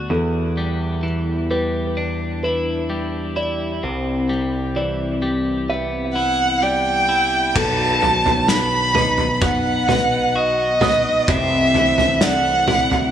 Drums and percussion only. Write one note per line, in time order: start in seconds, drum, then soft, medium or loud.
7.56 kick medium
7.56 floor tom medium
7.56 crash medium
8.02 floor tom medium
8.26 floor tom medium
8.49 snare medium
8.95 floor tom medium
8.95 mid tom medium
9.18 floor tom medium
9.41 kick medium
9.41 floor tom medium
9.89 floor tom medium
9.89 mid tom medium
10.81 floor tom medium
10.81 mid tom medium
11.28 kick medium
11.28 floor tom medium
11.74 floor tom medium
11.98 floor tom medium
12.21 snare medium
12.68 floor tom medium
12.68 mid tom medium
12.91 floor tom medium